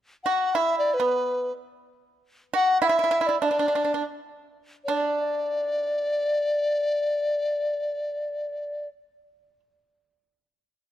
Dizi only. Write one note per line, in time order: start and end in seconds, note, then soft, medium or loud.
0.24 0.51 F#5 medium
0.51 0.78 E5 medium
0.51 0.56 F#5 medium
0.78 0.95 D5 medium
0.94 1.53 B4 medium
2.55 2.80 F#5 medium
2.82 2.87 F#5 medium
2.86 3.28 E5 medium
3.27 3.41 D5 medium
3.41 3.46 E5 medium
3.45 4.04 D5 medium
4.85 8.88 D5 medium